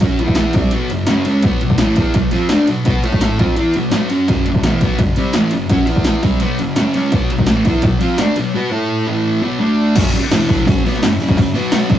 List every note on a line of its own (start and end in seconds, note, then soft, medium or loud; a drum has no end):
0.00 0.21 F#3 medium
0.00 0.21 C#4 medium
0.00 0.22 F#4 loud
0.00 kick loud
0.00 ride medium
0.19 0.55 E3 medium
0.19 0.55 B3 medium
0.19 0.56 E4 medium
0.19 ride medium
0.28 kick medium
0.35 snare loud
0.35 ride medium
0.53 0.72 C3 medium
0.53 0.73 G3 medium
0.53 0.73 C4 medium
0.53 kick loud
0.53 ride medium
0.71 0.90 B2 medium
0.71 0.90 F#3 medium
0.71 0.90 B3 loud
0.71 ride medium
0.90 1.04 F#2 medium
0.90 1.05 C#3 medium
0.90 ride medium
1.07 1.25 F#2 medium
1.07 1.25 C#3 loud
1.07 1.26 F#3 loud
1.07 snare loud
1.07 ride medium
1.25 1.43 C#3 medium
1.25 1.44 G#3 medium
1.25 1.44 C#4 loud
1.25 ride medium
1.43 1.61 B2 medium
1.43 1.61 F#3 medium
1.43 1.61 B3 loud
1.43 kick loud
1.43 ride medium
1.61 1.76 B2 medium
1.61 1.76 F#3 medium
1.61 ride medium
1.70 kick medium
1.78 1.97 A2 medium
1.78 1.97 E3 medium
1.78 snare loud
1.78 ride medium
1.82 1.98 A3 loud
1.96 2.15 E3 medium
1.96 2.15 B3 medium
1.96 2.16 E4 medium
1.96 kick medium
1.96 ride medium
2.14 2.29 B2 medium
2.14 2.29 F#3 medium
2.14 kick loud
2.14 ride loud
2.31 2.49 F3 medium
2.31 2.50 C4 medium
2.31 2.50 F4 loud
2.31 ride medium
2.49 2.68 D3 medium
2.49 2.68 A3 loud
2.49 2.68 D4 loud
2.49 snare loud
2.49 ride loud
2.67 2.82 B2 medium
2.67 2.82 F#3 medium
2.67 ride medium
2.85 3.03 B3 medium
2.85 3.04 F#4 loud
2.85 3.04 B4 loud
2.85 kick loud
2.85 ride medium
3.03 3.39 A3 medium
3.03 3.39 E4 medium
3.03 3.39 A4 medium
3.03 ride medium
3.12 kick medium
3.21 snare loud
3.21 ride medium
3.39 3.56 F3 medium
3.39 3.57 C4 medium
3.39 3.57 F4 medium
3.39 kick loud
3.39 ride medium
3.56 3.74 E3 medium
3.56 3.74 B3 medium
3.56 3.74 E4 loud
3.56 ride medium
3.74 3.89 B2 medium
3.74 3.90 F#3 medium
3.74 ride medium
3.91 4.09 B2 medium
3.91 4.09 F#3 medium
3.91 4.10 B3 loud
3.91 snare loud
3.91 ride medium
4.10 4.27 F#3 medium
4.10 4.28 C#4 medium
4.10 4.28 F#4 medium
4.10 ride medium
4.28 4.45 F#2 medium
4.28 4.45 C#3 loud
4.28 4.46 F#3 loud
4.28 kick loud
4.28 ride medium
4.46 4.60 F#2 medium
4.46 4.61 C#3 medium
4.46 ride medium
4.55 kick medium
4.63 4.81 E2 medium
4.63 4.80 B2 medium
4.63 4.82 E3 medium
4.63 snare loud
4.63 ride medium
4.81 4.99 B2 medium
4.81 4.99 F#3 medium
4.81 4.99 B3 medium
4.81 kick medium
4.81 ride medium
4.99 5.13 F#2 medium
4.99 5.14 C#3 medium
4.99 kick loud
4.99 ride medium
5.16 5.34 C3 medium
5.16 5.34 G3 medium
5.16 5.35 C4 loud
5.16 ride medium
5.33 5.52 A2 medium
5.33 5.52 E3 loud
5.33 5.52 A3 loud
5.33 snare loud
5.33 ride loud
5.51 5.66 F#2 medium
5.51 5.66 C#3 medium
5.51 ride medium
5.70 5.86 F#3 medium
5.70 5.87 C#4 loud
5.70 5.88 F#4 medium
5.70 kick loud
5.70 ride medium
5.86 6.22 E3 medium
5.86 6.23 B3 medium
5.86 6.23 E4 medium
5.86 ride medium
5.96 kick medium
6.04 snare loud
6.04 ride medium
6.23 6.40 C3 medium
6.23 6.41 G3 medium
6.23 6.41 C4 medium
6.23 kick loud
6.23 ride medium
6.40 6.58 B2 medium
6.40 6.59 F#3 loud
6.40 6.59 B3 loud
6.40 ride medium
6.59 6.73 F#2 medium
6.59 6.74 C#3 medium
6.59 ride medium
6.76 6.94 F#2 medium
6.76 6.94 C#3 loud
6.76 6.95 F#3 loud
6.76 snare loud
6.76 ride medium
6.94 7.12 C#3 medium
6.94 7.12 G#3 loud
6.94 7.13 C#4 loud
6.94 ride medium
7.12 7.29 B2 medium
7.12 7.30 F#3 medium
7.12 7.30 B3 loud
7.12 kick loud
7.12 ride medium
7.30 7.44 B2 medium
7.30 7.45 F#3 medium
7.30 ride medium
7.38 kick medium
7.46 7.65 A2 medium
7.46 7.65 E3 medium
7.46 7.66 A3 loud
7.46 snare loud
7.46 ride medium
7.65 7.83 E3 medium
7.65 7.83 B3 loud
7.65 7.83 E4 medium
7.65 kick medium
7.65 ride medium
7.82 7.98 B2 medium
7.82 7.98 F#3 medium
7.82 kick loud
7.82 ride medium
8.00 8.17 F3 medium
8.00 8.18 C4 medium
8.00 8.18 F4 loud
8.00 ride medium
8.18 8.35 D3 medium
8.18 8.36 A3 loud
8.18 8.36 D4 loud
8.18 snare loud
8.18 ride loud
8.36 8.51 B2 medium
8.36 8.51 F#3 medium
8.36 ride medium
8.55 8.70 B3 medium
8.55 8.71 F#4 loud
8.55 8.72 B4 loud
8.71 9.06 A3 medium
8.71 9.06 E4 medium
8.71 9.07 A4 loud
9.07 9.41 A2 medium
9.07 9.42 E3 medium
9.07 9.42 A3 medium
9.41 9.59 B2 medium
9.41 9.59 F#3 medium
9.41 9.60 B3 medium
9.60 9.95 D3 loud
9.60 9.95 A3 loud
9.60 9.95 D4 loud
9.95 10.13 F#2 medium
9.95 10.13 C#3 loud
9.95 10.13 F#3 medium
9.95 kick loud
9.95 open hi-hat medium
9.95 crash loud
10.14 muted distorted electric guitar stroke medium
10.14 open hi-hat medium
10.30 10.65 E2 loud
10.30 10.66 B2 loud
10.30 10.66 E3 loud
10.30 snare loud
10.30 open hi-hat medium
10.49 kick medium
10.49 open hi-hat medium
10.66 10.83 F#2 medium
10.66 10.83 C#3 loud
10.66 10.84 F#3 loud
10.66 kick loud
10.66 open hi-hat medium
10.84 11.01 B2 medium
10.84 11.01 F#3 loud
10.84 11.02 B3 loud
10.84 open hi-hat medium
10.95 snare soft
11.03 11.16 F#2 medium
11.03 11.17 C#3 medium
11.03 snare loud
11.03 open hi-hat medium
11.20 11.36 F#2 medium
11.20 11.37 C#3 loud
11.20 11.38 F#3 loud
11.20 open hi-hat medium
11.29 kick medium
11.37 11.51 F#2 medium
11.37 11.52 C#3 medium
11.37 kick loud
11.37 open hi-hat medium
11.54 11.89 B2 medium
11.54 11.90 F#3 medium
11.54 11.90 B3 medium
11.54 open hi-hat medium
11.72 snare loud
11.72 open hi-hat medium
11.90 11.99 F#2 medium
11.90 11.99 C#3 loud
11.90 11.99 F#3 loud
11.90 kick loud
11.90 open hi-hat medium